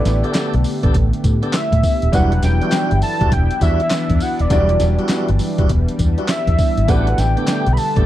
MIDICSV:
0, 0, Header, 1, 7, 480
1, 0, Start_track
1, 0, Key_signature, 1, "minor"
1, 0, Tempo, 594059
1, 1721, Time_signature, 4, 2, 24, 8
1, 6512, End_track
2, 0, Start_track
2, 0, Title_t, "Soft synth lead"
2, 0, Program_c, 0, 80
2, 0, Note_on_c, 0, 74, 87
2, 195, Note_off_c, 0, 74, 0
2, 1250, Note_on_c, 0, 76, 88
2, 1730, Note_on_c, 0, 78, 101
2, 1742, Note_off_c, 0, 76, 0
2, 1966, Note_off_c, 0, 78, 0
2, 1972, Note_on_c, 0, 79, 111
2, 2414, Note_off_c, 0, 79, 0
2, 2447, Note_on_c, 0, 81, 124
2, 2688, Note_on_c, 0, 79, 114
2, 2700, Note_off_c, 0, 81, 0
2, 2924, Note_off_c, 0, 79, 0
2, 2930, Note_on_c, 0, 76, 109
2, 3408, Note_on_c, 0, 78, 97
2, 3420, Note_off_c, 0, 76, 0
2, 3561, Note_on_c, 0, 74, 84
2, 3573, Note_off_c, 0, 78, 0
2, 4037, Note_off_c, 0, 74, 0
2, 5093, Note_on_c, 0, 76, 91
2, 5569, Note_on_c, 0, 78, 104
2, 5582, Note_off_c, 0, 76, 0
2, 5804, Note_on_c, 0, 79, 112
2, 5816, Note_off_c, 0, 78, 0
2, 6243, Note_on_c, 0, 83, 80
2, 6255, Note_off_c, 0, 79, 0
2, 6285, Note_on_c, 0, 81, 127
2, 6297, Note_off_c, 0, 83, 0
2, 6512, Note_off_c, 0, 81, 0
2, 6512, End_track
3, 0, Start_track
3, 0, Title_t, "Grand piano"
3, 0, Program_c, 1, 0
3, 0, Control_c, 1, 64, 127
3, 0, Note_on_c, 1, 57, 73
3, 0, Note_on_c, 1, 62, 66
3, 0, Note_on_c, 1, 64, 68
3, 0, Note_on_c, 1, 67, 67
3, 0, Note_on_c, 1, 71, 76
3, 1686, Note_off_c, 1, 57, 0
3, 1688, Note_off_c, 1, 62, 0
3, 1690, Note_off_c, 1, 64, 0
3, 1693, Note_off_c, 1, 67, 0
3, 1695, Note_off_c, 1, 71, 0
3, 1713, Note_on_c, 1, 55, 73
3, 1717, Note_on_c, 1, 62, 61
3, 1724, Note_on_c, 1, 64, 62
3, 1728, Note_on_c, 1, 54, 64
3, 1731, Control_c, 1, 64, 0
3, 1733, Note_on_c, 1, 71, 73
3, 1852, Control_c, 1, 64, 127
3, 3605, Note_off_c, 1, 55, 0
3, 3607, Note_off_c, 1, 62, 0
3, 3610, Note_off_c, 1, 64, 0
3, 3612, Note_off_c, 1, 54, 0
3, 3615, Note_off_c, 1, 71, 0
3, 3638, Note_on_c, 1, 54, 54
3, 3643, Note_on_c, 1, 62, 60
3, 3647, Note_on_c, 1, 64, 61
3, 3652, Note_on_c, 1, 66, 64
3, 3657, Note_on_c, 1, 74, 76
3, 3689, Note_on_c, 1, 55, 71
3, 3706, Note_off_c, 1, 54, 0
3, 5530, Note_off_c, 1, 62, 0
3, 5531, Note_off_c, 1, 64, 0
3, 5534, Note_off_c, 1, 66, 0
3, 5537, Note_off_c, 1, 74, 0
3, 5553, Note_off_c, 1, 55, 0
3, 5557, Note_on_c, 1, 57, 65
3, 5561, Note_on_c, 1, 62, 65
3, 5564, Note_on_c, 1, 64, 66
3, 5571, Note_on_c, 1, 67, 60
3, 5573, Control_c, 1, 64, 0
3, 5576, Note_on_c, 1, 71, 80
3, 5707, Control_c, 1, 64, 127
3, 6512, Note_off_c, 1, 57, 0
3, 6512, Note_off_c, 1, 62, 0
3, 6512, Note_off_c, 1, 64, 0
3, 6512, Note_off_c, 1, 67, 0
3, 6512, Note_off_c, 1, 71, 0
3, 6512, End_track
4, 0, Start_track
4, 0, Title_t, "Tonewheel organ"
4, 0, Program_c, 2, 16
4, 189, Note_on_c, 2, 59, 72
4, 191, Note_on_c, 2, 62, 65
4, 192, Note_on_c, 2, 67, 65
4, 195, Note_on_c, 2, 69, 84
4, 268, Note_off_c, 2, 59, 0
4, 269, Note_off_c, 2, 62, 0
4, 270, Note_off_c, 2, 67, 0
4, 272, Note_off_c, 2, 69, 0
4, 277, Note_on_c, 2, 59, 77
4, 279, Note_on_c, 2, 62, 65
4, 280, Note_on_c, 2, 67, 66
4, 282, Note_on_c, 2, 69, 85
4, 443, Note_off_c, 2, 59, 0
4, 444, Note_off_c, 2, 62, 0
4, 445, Note_off_c, 2, 67, 0
4, 446, Note_off_c, 2, 69, 0
4, 670, Note_on_c, 2, 59, 81
4, 671, Note_on_c, 2, 62, 70
4, 674, Note_on_c, 2, 67, 65
4, 675, Note_on_c, 2, 69, 86
4, 779, Note_off_c, 2, 59, 0
4, 780, Note_off_c, 2, 62, 0
4, 781, Note_off_c, 2, 67, 0
4, 782, Note_off_c, 2, 69, 0
4, 1150, Note_on_c, 2, 59, 74
4, 1151, Note_on_c, 2, 62, 67
4, 1154, Note_on_c, 2, 67, 64
4, 1155, Note_on_c, 2, 69, 81
4, 1259, Note_off_c, 2, 59, 0
4, 1260, Note_off_c, 2, 62, 0
4, 1261, Note_off_c, 2, 67, 0
4, 1262, Note_off_c, 2, 69, 0
4, 1718, Note_on_c, 2, 55, 100
4, 1720, Note_on_c, 2, 62, 80
4, 1722, Note_on_c, 2, 64, 86
4, 1723, Note_on_c, 2, 66, 103
4, 1884, Note_off_c, 2, 55, 0
4, 1884, Note_off_c, 2, 62, 0
4, 1885, Note_off_c, 2, 64, 0
4, 1886, Note_off_c, 2, 66, 0
4, 2110, Note_on_c, 2, 55, 66
4, 2112, Note_on_c, 2, 62, 68
4, 2114, Note_on_c, 2, 64, 60
4, 2116, Note_on_c, 2, 66, 81
4, 2187, Note_off_c, 2, 55, 0
4, 2189, Note_off_c, 2, 62, 0
4, 2190, Note_off_c, 2, 64, 0
4, 2192, Note_off_c, 2, 66, 0
4, 2197, Note_on_c, 2, 55, 74
4, 2198, Note_on_c, 2, 62, 68
4, 2200, Note_on_c, 2, 64, 74
4, 2201, Note_on_c, 2, 66, 83
4, 2363, Note_off_c, 2, 55, 0
4, 2364, Note_off_c, 2, 62, 0
4, 2365, Note_off_c, 2, 64, 0
4, 2365, Note_off_c, 2, 66, 0
4, 2588, Note_on_c, 2, 55, 81
4, 2590, Note_on_c, 2, 62, 72
4, 2591, Note_on_c, 2, 64, 68
4, 2593, Note_on_c, 2, 66, 86
4, 2698, Note_off_c, 2, 55, 0
4, 2699, Note_off_c, 2, 62, 0
4, 2700, Note_off_c, 2, 64, 0
4, 2701, Note_off_c, 2, 66, 0
4, 2917, Note_on_c, 2, 55, 81
4, 2919, Note_on_c, 2, 62, 74
4, 2920, Note_on_c, 2, 64, 72
4, 2921, Note_on_c, 2, 66, 91
4, 3083, Note_off_c, 2, 55, 0
4, 3084, Note_off_c, 2, 62, 0
4, 3084, Note_off_c, 2, 64, 0
4, 3085, Note_off_c, 2, 66, 0
4, 3636, Note_on_c, 2, 55, 89
4, 3637, Note_on_c, 2, 62, 85
4, 3640, Note_on_c, 2, 64, 86
4, 3641, Note_on_c, 2, 66, 101
4, 3803, Note_off_c, 2, 55, 0
4, 3803, Note_off_c, 2, 62, 0
4, 3804, Note_off_c, 2, 64, 0
4, 3805, Note_off_c, 2, 66, 0
4, 4029, Note_on_c, 2, 55, 75
4, 4032, Note_on_c, 2, 62, 68
4, 4034, Note_on_c, 2, 64, 69
4, 4035, Note_on_c, 2, 66, 73
4, 4110, Note_off_c, 2, 55, 0
4, 4110, Note_off_c, 2, 62, 0
4, 4112, Note_off_c, 2, 64, 0
4, 4114, Note_off_c, 2, 66, 0
4, 4119, Note_on_c, 2, 55, 80
4, 4120, Note_on_c, 2, 62, 66
4, 4122, Note_on_c, 2, 64, 66
4, 4123, Note_on_c, 2, 66, 85
4, 4284, Note_off_c, 2, 55, 0
4, 4284, Note_off_c, 2, 62, 0
4, 4286, Note_off_c, 2, 64, 0
4, 4286, Note_off_c, 2, 66, 0
4, 4510, Note_on_c, 2, 55, 76
4, 4513, Note_on_c, 2, 62, 74
4, 4515, Note_on_c, 2, 64, 75
4, 4516, Note_on_c, 2, 66, 83
4, 4619, Note_off_c, 2, 55, 0
4, 4621, Note_off_c, 2, 62, 0
4, 4622, Note_off_c, 2, 64, 0
4, 4622, Note_off_c, 2, 66, 0
4, 4994, Note_on_c, 2, 55, 71
4, 4995, Note_on_c, 2, 62, 61
4, 4997, Note_on_c, 2, 64, 65
4, 4998, Note_on_c, 2, 66, 79
4, 5101, Note_off_c, 2, 55, 0
4, 5102, Note_off_c, 2, 62, 0
4, 5103, Note_off_c, 2, 64, 0
4, 5103, Note_off_c, 2, 66, 0
4, 5560, Note_on_c, 2, 57, 92
4, 5563, Note_on_c, 2, 59, 82
4, 5563, Note_on_c, 2, 62, 91
4, 5565, Note_on_c, 2, 67, 113
4, 5724, Note_off_c, 2, 57, 0
4, 5726, Note_off_c, 2, 59, 0
4, 5726, Note_off_c, 2, 62, 0
4, 5727, Note_off_c, 2, 67, 0
4, 5954, Note_on_c, 2, 57, 78
4, 5954, Note_on_c, 2, 59, 68
4, 5956, Note_on_c, 2, 62, 70
4, 5958, Note_on_c, 2, 67, 76
4, 6028, Note_off_c, 2, 57, 0
4, 6030, Note_off_c, 2, 59, 0
4, 6032, Note_off_c, 2, 62, 0
4, 6034, Note_off_c, 2, 67, 0
4, 6038, Note_on_c, 2, 57, 70
4, 6039, Note_on_c, 2, 59, 63
4, 6042, Note_on_c, 2, 62, 67
4, 6043, Note_on_c, 2, 67, 80
4, 6204, Note_off_c, 2, 57, 0
4, 6204, Note_off_c, 2, 59, 0
4, 6206, Note_off_c, 2, 62, 0
4, 6206, Note_off_c, 2, 67, 0
4, 6432, Note_on_c, 2, 57, 77
4, 6434, Note_on_c, 2, 59, 69
4, 6436, Note_on_c, 2, 62, 70
4, 6437, Note_on_c, 2, 67, 87
4, 6512, Note_off_c, 2, 57, 0
4, 6512, Note_off_c, 2, 59, 0
4, 6512, Note_off_c, 2, 62, 0
4, 6512, Note_off_c, 2, 67, 0
4, 6512, End_track
5, 0, Start_track
5, 0, Title_t, "Analog synth pad"
5, 0, Program_c, 3, 89
5, 0, Note_on_c, 3, 50, 91
5, 0, Note_on_c, 3, 57, 85
5, 0, Note_on_c, 3, 59, 87
5, 0, Note_on_c, 3, 67, 98
5, 1687, Note_off_c, 3, 67, 0
5, 1688, Note_off_c, 3, 50, 0
5, 1688, Note_off_c, 3, 57, 0
5, 1688, Note_off_c, 3, 59, 0
5, 1718, Note_on_c, 3, 52, 96
5, 1718, Note_on_c, 3, 59, 88
5, 1719, Note_on_c, 3, 62, 83
5, 1721, Note_on_c, 3, 64, 99
5, 3622, Note_off_c, 3, 64, 0
5, 3639, Note_on_c, 3, 55, 94
5, 5527, Note_off_c, 3, 52, 0
5, 5527, Note_off_c, 3, 59, 0
5, 5528, Note_off_c, 3, 62, 0
5, 5557, Note_on_c, 3, 50, 89
5, 5558, Note_on_c, 3, 59, 84
5, 5559, Note_on_c, 3, 57, 83
5, 6512, Note_off_c, 3, 50, 0
5, 6512, Note_off_c, 3, 55, 0
5, 6512, Note_off_c, 3, 57, 0
5, 6512, Note_off_c, 3, 59, 0
5, 6512, End_track
6, 0, Start_track
6, 0, Title_t, "Fingered electric bass"
6, 0, Program_c, 4, 33
6, 46, Note_on_c, 4, 33, 110
6, 172, Note_off_c, 4, 33, 0
6, 439, Note_on_c, 4, 35, 96
6, 510, Note_off_c, 4, 35, 0
6, 677, Note_on_c, 4, 33, 85
6, 749, Note_off_c, 4, 33, 0
6, 762, Note_on_c, 4, 33, 98
6, 890, Note_off_c, 4, 33, 0
6, 1004, Note_on_c, 4, 45, 99
6, 1131, Note_off_c, 4, 45, 0
6, 1393, Note_on_c, 4, 45, 87
6, 1467, Note_off_c, 4, 45, 0
6, 1639, Note_on_c, 4, 27, 91
6, 1710, Note_off_c, 4, 27, 0
6, 1722, Note_on_c, 4, 28, 109
6, 1924, Note_off_c, 4, 28, 0
6, 1964, Note_on_c, 4, 28, 103
6, 2091, Note_off_c, 4, 28, 0
6, 2358, Note_on_c, 4, 31, 103
6, 2430, Note_off_c, 4, 31, 0
6, 2596, Note_on_c, 4, 28, 91
6, 2669, Note_off_c, 4, 28, 0
6, 2682, Note_on_c, 4, 28, 98
6, 2810, Note_off_c, 4, 28, 0
6, 2922, Note_on_c, 4, 40, 105
6, 3050, Note_off_c, 4, 40, 0
6, 3312, Note_on_c, 4, 40, 99
6, 3386, Note_off_c, 4, 40, 0
6, 3556, Note_on_c, 4, 27, 101
6, 3628, Note_off_c, 4, 27, 0
6, 3642, Note_on_c, 4, 28, 106
6, 3843, Note_off_c, 4, 28, 0
6, 3883, Note_on_c, 4, 28, 99
6, 4011, Note_off_c, 4, 28, 0
6, 4276, Note_on_c, 4, 31, 91
6, 4348, Note_off_c, 4, 31, 0
6, 4516, Note_on_c, 4, 28, 91
6, 4588, Note_off_c, 4, 28, 0
6, 4602, Note_on_c, 4, 28, 99
6, 4730, Note_off_c, 4, 28, 0
6, 4844, Note_on_c, 4, 40, 104
6, 4971, Note_off_c, 4, 40, 0
6, 5233, Note_on_c, 4, 40, 101
6, 5307, Note_off_c, 4, 40, 0
6, 5476, Note_on_c, 4, 32, 92
6, 5549, Note_off_c, 4, 32, 0
6, 5563, Note_on_c, 4, 33, 106
6, 5764, Note_off_c, 4, 33, 0
6, 5805, Note_on_c, 4, 33, 99
6, 5932, Note_off_c, 4, 33, 0
6, 6197, Note_on_c, 4, 35, 101
6, 6269, Note_off_c, 4, 35, 0
6, 6438, Note_on_c, 4, 33, 89
6, 6510, Note_off_c, 4, 33, 0
6, 6512, End_track
7, 0, Start_track
7, 0, Title_t, "Drums"
7, 42, Note_on_c, 9, 54, 71
7, 44, Note_on_c, 9, 38, 76
7, 44, Note_on_c, 9, 42, 83
7, 123, Note_off_c, 9, 54, 0
7, 125, Note_off_c, 9, 38, 0
7, 125, Note_off_c, 9, 42, 0
7, 195, Note_on_c, 9, 42, 49
7, 275, Note_off_c, 9, 42, 0
7, 276, Note_on_c, 9, 39, 87
7, 280, Note_off_c, 9, 39, 0
7, 280, Note_on_c, 9, 39, 111
7, 282, Note_on_c, 9, 42, 88
7, 283, Note_on_c, 9, 38, 109
7, 284, Note_on_c, 9, 54, 86
7, 360, Note_off_c, 9, 39, 0
7, 363, Note_off_c, 9, 42, 0
7, 364, Note_off_c, 9, 38, 0
7, 365, Note_off_c, 9, 54, 0
7, 432, Note_on_c, 9, 42, 52
7, 513, Note_off_c, 9, 42, 0
7, 519, Note_on_c, 9, 54, 73
7, 520, Note_on_c, 9, 46, 83
7, 600, Note_off_c, 9, 46, 0
7, 600, Note_off_c, 9, 54, 0
7, 672, Note_on_c, 9, 42, 49
7, 674, Note_on_c, 9, 36, 100
7, 752, Note_off_c, 9, 42, 0
7, 755, Note_off_c, 9, 36, 0
7, 761, Note_on_c, 9, 36, 93
7, 763, Note_on_c, 9, 42, 97
7, 842, Note_off_c, 9, 36, 0
7, 844, Note_off_c, 9, 42, 0
7, 916, Note_on_c, 9, 42, 58
7, 997, Note_off_c, 9, 42, 0
7, 1002, Note_on_c, 9, 36, 94
7, 1002, Note_on_c, 9, 42, 76
7, 1002, Note_on_c, 9, 54, 65
7, 1083, Note_off_c, 9, 36, 0
7, 1083, Note_off_c, 9, 42, 0
7, 1083, Note_off_c, 9, 54, 0
7, 1153, Note_on_c, 9, 42, 46
7, 1234, Note_off_c, 9, 42, 0
7, 1236, Note_on_c, 9, 39, 91
7, 1240, Note_off_c, 9, 39, 0
7, 1240, Note_on_c, 9, 39, 97
7, 1242, Note_on_c, 9, 42, 71
7, 1243, Note_on_c, 9, 38, 105
7, 1245, Note_on_c, 9, 54, 99
7, 1321, Note_off_c, 9, 39, 0
7, 1323, Note_off_c, 9, 42, 0
7, 1324, Note_off_c, 9, 38, 0
7, 1326, Note_off_c, 9, 54, 0
7, 1391, Note_on_c, 9, 36, 97
7, 1394, Note_on_c, 9, 42, 56
7, 1472, Note_off_c, 9, 36, 0
7, 1475, Note_off_c, 9, 42, 0
7, 1482, Note_on_c, 9, 36, 99
7, 1482, Note_on_c, 9, 46, 65
7, 1482, Note_on_c, 9, 54, 67
7, 1562, Note_off_c, 9, 36, 0
7, 1563, Note_off_c, 9, 46, 0
7, 1563, Note_off_c, 9, 54, 0
7, 1633, Note_on_c, 9, 42, 62
7, 1714, Note_off_c, 9, 42, 0
7, 1720, Note_on_c, 9, 36, 113
7, 1721, Note_on_c, 9, 54, 69
7, 1722, Note_on_c, 9, 42, 87
7, 1801, Note_off_c, 9, 36, 0
7, 1802, Note_off_c, 9, 42, 0
7, 1802, Note_off_c, 9, 54, 0
7, 1874, Note_on_c, 9, 42, 58
7, 1955, Note_off_c, 9, 42, 0
7, 1959, Note_on_c, 9, 54, 75
7, 1961, Note_on_c, 9, 38, 74
7, 1961, Note_on_c, 9, 42, 78
7, 2040, Note_off_c, 9, 54, 0
7, 2042, Note_off_c, 9, 38, 0
7, 2042, Note_off_c, 9, 42, 0
7, 2113, Note_on_c, 9, 42, 49
7, 2194, Note_off_c, 9, 42, 0
7, 2194, Note_on_c, 9, 39, 83
7, 2201, Note_off_c, 9, 39, 0
7, 2201, Note_on_c, 9, 38, 110
7, 2201, Note_on_c, 9, 39, 109
7, 2201, Note_on_c, 9, 42, 81
7, 2203, Note_on_c, 9, 54, 91
7, 2281, Note_off_c, 9, 39, 0
7, 2281, Note_off_c, 9, 42, 0
7, 2282, Note_off_c, 9, 38, 0
7, 2284, Note_off_c, 9, 54, 0
7, 2352, Note_on_c, 9, 42, 57
7, 2433, Note_off_c, 9, 42, 0
7, 2439, Note_on_c, 9, 46, 87
7, 2439, Note_on_c, 9, 54, 67
7, 2520, Note_off_c, 9, 46, 0
7, 2520, Note_off_c, 9, 54, 0
7, 2591, Note_on_c, 9, 42, 49
7, 2593, Note_on_c, 9, 36, 94
7, 2672, Note_off_c, 9, 42, 0
7, 2674, Note_off_c, 9, 36, 0
7, 2680, Note_on_c, 9, 36, 94
7, 2681, Note_on_c, 9, 42, 91
7, 2761, Note_off_c, 9, 36, 0
7, 2762, Note_off_c, 9, 42, 0
7, 2833, Note_on_c, 9, 42, 59
7, 2914, Note_off_c, 9, 42, 0
7, 2918, Note_on_c, 9, 42, 74
7, 2919, Note_on_c, 9, 54, 63
7, 2921, Note_on_c, 9, 36, 94
7, 2999, Note_off_c, 9, 42, 0
7, 3000, Note_off_c, 9, 54, 0
7, 3001, Note_off_c, 9, 36, 0
7, 3070, Note_on_c, 9, 42, 47
7, 3150, Note_off_c, 9, 42, 0
7, 3153, Note_on_c, 9, 39, 84
7, 3158, Note_off_c, 9, 39, 0
7, 3158, Note_on_c, 9, 39, 98
7, 3158, Note_on_c, 9, 42, 74
7, 3160, Note_on_c, 9, 38, 104
7, 3161, Note_on_c, 9, 54, 101
7, 3239, Note_off_c, 9, 39, 0
7, 3239, Note_off_c, 9, 42, 0
7, 3240, Note_off_c, 9, 38, 0
7, 3242, Note_off_c, 9, 54, 0
7, 3309, Note_on_c, 9, 36, 91
7, 3309, Note_on_c, 9, 42, 54
7, 3390, Note_off_c, 9, 36, 0
7, 3390, Note_off_c, 9, 42, 0
7, 3397, Note_on_c, 9, 46, 64
7, 3397, Note_on_c, 9, 54, 66
7, 3478, Note_off_c, 9, 46, 0
7, 3478, Note_off_c, 9, 54, 0
7, 3551, Note_on_c, 9, 42, 62
7, 3632, Note_off_c, 9, 42, 0
7, 3637, Note_on_c, 9, 42, 83
7, 3637, Note_on_c, 9, 54, 71
7, 3639, Note_on_c, 9, 36, 118
7, 3718, Note_off_c, 9, 42, 0
7, 3718, Note_off_c, 9, 54, 0
7, 3720, Note_off_c, 9, 36, 0
7, 3790, Note_on_c, 9, 42, 56
7, 3871, Note_off_c, 9, 42, 0
7, 3875, Note_on_c, 9, 54, 78
7, 3877, Note_on_c, 9, 38, 77
7, 3877, Note_on_c, 9, 42, 78
7, 3956, Note_off_c, 9, 54, 0
7, 3958, Note_off_c, 9, 38, 0
7, 3958, Note_off_c, 9, 42, 0
7, 4029, Note_on_c, 9, 42, 47
7, 4109, Note_off_c, 9, 42, 0
7, 4109, Note_on_c, 9, 39, 92
7, 4115, Note_on_c, 9, 42, 74
7, 4116, Note_on_c, 9, 38, 105
7, 4118, Note_on_c, 9, 54, 99
7, 4122, Note_off_c, 9, 39, 0
7, 4122, Note_on_c, 9, 39, 110
7, 4196, Note_off_c, 9, 42, 0
7, 4197, Note_off_c, 9, 38, 0
7, 4198, Note_off_c, 9, 54, 0
7, 4203, Note_off_c, 9, 39, 0
7, 4270, Note_on_c, 9, 42, 55
7, 4351, Note_off_c, 9, 42, 0
7, 4356, Note_on_c, 9, 54, 74
7, 4357, Note_on_c, 9, 46, 83
7, 4437, Note_off_c, 9, 46, 0
7, 4437, Note_off_c, 9, 54, 0
7, 4511, Note_on_c, 9, 42, 51
7, 4513, Note_on_c, 9, 36, 99
7, 4591, Note_off_c, 9, 42, 0
7, 4594, Note_off_c, 9, 36, 0
7, 4600, Note_on_c, 9, 36, 93
7, 4601, Note_on_c, 9, 42, 87
7, 4681, Note_off_c, 9, 36, 0
7, 4681, Note_off_c, 9, 42, 0
7, 4755, Note_on_c, 9, 42, 60
7, 4836, Note_off_c, 9, 42, 0
7, 4840, Note_on_c, 9, 42, 81
7, 4841, Note_on_c, 9, 36, 92
7, 4841, Note_on_c, 9, 54, 66
7, 4921, Note_off_c, 9, 42, 0
7, 4921, Note_off_c, 9, 54, 0
7, 4922, Note_off_c, 9, 36, 0
7, 4992, Note_on_c, 9, 42, 47
7, 5072, Note_off_c, 9, 42, 0
7, 5075, Note_on_c, 9, 39, 83
7, 5079, Note_off_c, 9, 39, 0
7, 5079, Note_on_c, 9, 39, 106
7, 5081, Note_on_c, 9, 42, 69
7, 5082, Note_on_c, 9, 38, 110
7, 5084, Note_on_c, 9, 54, 100
7, 5160, Note_off_c, 9, 39, 0
7, 5161, Note_off_c, 9, 42, 0
7, 5163, Note_off_c, 9, 38, 0
7, 5164, Note_off_c, 9, 54, 0
7, 5230, Note_on_c, 9, 36, 93
7, 5231, Note_on_c, 9, 42, 54
7, 5311, Note_off_c, 9, 36, 0
7, 5312, Note_off_c, 9, 42, 0
7, 5321, Note_on_c, 9, 36, 102
7, 5321, Note_on_c, 9, 46, 64
7, 5321, Note_on_c, 9, 54, 64
7, 5401, Note_off_c, 9, 46, 0
7, 5401, Note_off_c, 9, 54, 0
7, 5402, Note_off_c, 9, 36, 0
7, 5474, Note_on_c, 9, 42, 65
7, 5555, Note_off_c, 9, 42, 0
7, 5561, Note_on_c, 9, 36, 118
7, 5562, Note_on_c, 9, 42, 82
7, 5562, Note_on_c, 9, 54, 66
7, 5642, Note_off_c, 9, 36, 0
7, 5642, Note_off_c, 9, 54, 0
7, 5643, Note_off_c, 9, 42, 0
7, 5714, Note_on_c, 9, 42, 57
7, 5794, Note_off_c, 9, 42, 0
7, 5800, Note_on_c, 9, 54, 79
7, 5802, Note_on_c, 9, 38, 68
7, 5802, Note_on_c, 9, 42, 80
7, 5881, Note_off_c, 9, 54, 0
7, 5883, Note_off_c, 9, 38, 0
7, 5883, Note_off_c, 9, 42, 0
7, 5955, Note_on_c, 9, 42, 51
7, 6036, Note_off_c, 9, 42, 0
7, 6037, Note_on_c, 9, 39, 82
7, 6041, Note_off_c, 9, 39, 0
7, 6041, Note_on_c, 9, 39, 114
7, 6044, Note_on_c, 9, 38, 107
7, 6044, Note_on_c, 9, 42, 81
7, 6046, Note_on_c, 9, 54, 90
7, 6122, Note_off_c, 9, 39, 0
7, 6124, Note_off_c, 9, 42, 0
7, 6125, Note_off_c, 9, 38, 0
7, 6127, Note_off_c, 9, 54, 0
7, 6193, Note_on_c, 9, 42, 58
7, 6274, Note_off_c, 9, 42, 0
7, 6279, Note_on_c, 9, 46, 83
7, 6279, Note_on_c, 9, 54, 77
7, 6360, Note_off_c, 9, 46, 0
7, 6360, Note_off_c, 9, 54, 0
7, 6434, Note_on_c, 9, 42, 53
7, 6435, Note_on_c, 9, 36, 98
7, 6512, Note_off_c, 9, 36, 0
7, 6512, Note_off_c, 9, 42, 0
7, 6512, End_track
0, 0, End_of_file